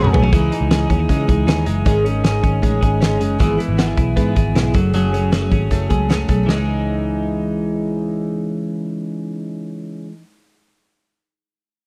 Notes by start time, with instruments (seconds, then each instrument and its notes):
Already playing: twelve-string acoustic guitar F#3 A3 C#4 G#4, clean electric guitar F#3 A3 C#4, transistor combo organ A3 C#4 F#4 G#4, analog synth pad A3 F#5 G#5 C#6
0.04 mid tom
0.13 picked electric bass B1, twelve-string acoustic guitar F#3 A3 C#4 G#4, clean electric guitar B3, floor tom
0.23 clean electric guitar C#4, floor tom
0.33 picked electric bass C#2, twelve-string acoustic guitar C#3 E3 G#3 D#4, clean electric guitar G#4, kick, closed hi-hat
0.52 twelve-string acoustic guitar E3 G#3 D#4, closed hi-hat
0.61 picked electric bass C#2
0.71 twelve-string acoustic guitar C#3 E3 G#3 D#4, clean electric guitar G#4, snare, closed hi-hat
0.90 picked electric bass D#2, twelve-string acoustic guitar E3 G#3 D#4, clean electric guitar C#4, kick, closed hi-hat
0.99 clean electric guitar D#4
1.09 twelve-string acoustic guitar C#3 E3 G#3 D#4, picked electric bass C#3, kick, closed hi-hat
1.27 picked electric bass C#2, twelve-string acoustic guitar E3 G#3 D#4, clean electric guitar G#4, kick, closed hi-hat
1.47 picked electric bass D#2, twelve-string acoustic guitar C#3 E3 G#3 D#4, snare, closed hi-hat
1.65 picked electric bass F#1, twelve-string acoustic guitar E3 G#3 D#4, closed hi-hat
1.85 picked electric bass G#1, twelve-string acoustic guitar G#2 C#3 G#3 C#4 D#4, clean electric guitar D#3 G#4, kick, closed hi-hat
2.04 twelve-string acoustic guitar G#3 C#4 D#4, closed hi-hat
2.24 twelve-string acoustic guitar G#2 C#3 G#3 C#4 D#4, clean electric guitar G#4, snare, closed hi-hat
2.42 picked electric bass G#1, twelve-string acoustic guitar G#3 C#4 D#4, kick, closed hi-hat
2.62 picked electric bass A1, twelve-string acoustic guitar C#3 G#3 C#4 D#4, kick, closed hi-hat
2.81 picked electric bass G#1, twelve-string acoustic guitar G#3 C#4 D#4, clean electric guitar G#4, kick, closed hi-hat
3.00 twelve-string acoustic guitar G#2 C#3 G#3 C#4 D#4, snare, closed hi-hat
3.19 picked electric bass F#1, twelve-string acoustic guitar G#3 C#4 D#4, closed hi-hat
3.38 picked electric bass G#1, twelve-string acoustic guitar G#2 E3 G#3 B3 E4, clean electric guitar G#4, kick, closed hi-hat
3.57 twelve-string acoustic guitar G#3 B3 E4, closed hi-hat
3.68 picked electric bass G#1
3.77 twelve-string acoustic guitar G#2 E3 G#3 B3 E4, clean electric guitar F#4, snare, closed hi-hat
3.88 clean electric guitar G#4
3.97 picked electric bass B1, twelve-string acoustic guitar G#3 B3 E4, kick, closed hi-hat
4.16 picked electric bass G#2, twelve-string acoustic guitar E3 G#3 B3 E4, kick, closed hi-hat
4.36 picked electric bass G#1, twelve-string acoustic guitar G#3 B3 E4, clean electric guitar G#4, kick, closed hi-hat
4.55 picked electric bass B1, twelve-string acoustic guitar G#2 E3 G#3 B3 E4, snare, closed hi-hat
4.74 picked electric bass F#1, twelve-string acoustic guitar F#3 A3 C#4 G#4, kick, closed hi-hat
4.93 picked electric bass F#1, twelve-string acoustic guitar F#2 C#3 F#3 A3 C#4 G#4, closed hi-hat
5.12 twelve-string acoustic guitar F#3 A3 C#4 G#4, closed hi-hat
5.31 twelve-string acoustic guitar F#2 C#3 F#3 A3 C#4 G#4, clean electric guitar F#4, snare, closed hi-hat
5.42 clean electric guitar G#4
5.51 picked electric bass G#1, twelve-string acoustic guitar F#3 A3 C#4 G#4, kick, closed hi-hat
5.70 picked electric bass F#1, twelve-string acoustic guitar F#3 A3 C#4 G#4, kick, snare, closed hi-hat
5.89 picked electric bass C#2, twelve-string acoustic guitar F#3 A3 C#4 G#4, kick, closed hi-hat
6.09 twelve-string acoustic guitar F#2 C#3 F#3 A3 C#4 G#4, snare, closed hi-hat
6.28 picked electric bass B1, twelve-string acoustic guitar F#3 A3 C#4 G#4, kick, closed hi-hat
6.43 twelve-string acoustic guitar C#3
6.48 picked electric bass C#2, twelve-string acoustic guitar E3, clean electric guitar G#3 D#4 G#4, snare
6.54 twelve-string acoustic guitar G#3 D#4